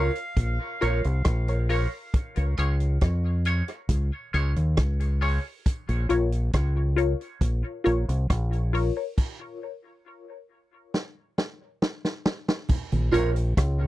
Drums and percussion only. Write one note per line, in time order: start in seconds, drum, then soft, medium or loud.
0.15 closed hi-hat soft
0.37 kick loud
0.37 closed hi-hat medium
0.82 closed hi-hat medium
1.04 closed hi-hat medium
1.25 kick loud
1.25 cross-stick medium
1.25 closed hi-hat medium
1.48 closed hi-hat soft
1.70 open hi-hat medium
2.14 kick loud
2.14 closed hi-hat loud
2.36 closed hi-hat medium
2.58 closed hi-hat medium
2.80 closed hi-hat soft
3.01 kick loud
3.01 cross-stick medium
3.01 closed hi-hat medium
3.45 closed hi-hat medium
3.68 closed hi-hat soft
3.89 kick loud
3.89 closed hi-hat medium
4.34 closed hi-hat medium
4.56 closed hi-hat medium
4.77 kick loud
4.77 cross-stick loud
4.77 closed hi-hat medium
5.00 closed hi-hat soft
5.22 open hi-hat medium
5.66 kick loud
5.66 closed hi-hat medium
5.89 closed hi-hat medium
6.10 closed hi-hat medium
6.32 closed hi-hat medium
6.53 kick loud
6.53 cross-stick loud
6.53 closed hi-hat medium
6.98 closed hi-hat medium
7.21 closed hi-hat soft
7.41 kick loud
7.41 closed hi-hat medium
7.86 closed hi-hat medium
8.09 closed hi-hat medium
8.30 kick loud
8.30 cross-stick medium
8.30 closed hi-hat medium
8.53 closed hi-hat soft
8.75 open hi-hat medium
9.18 kick loud
9.18 crash medium
10.94 snare medium
11.38 snare medium
11.82 snare medium
12.05 snare medium
12.26 snare loud
12.48 snare medium
12.69 kick loud
12.69 crash loud
12.69 low conga medium
12.92 closed hi-hat medium
12.92 high conga medium
13.12 closed hi-hat medium
13.12 low conga medium
13.36 closed hi-hat medium
13.57 kick loud
13.57 cross-stick loud
13.57 closed hi-hat medium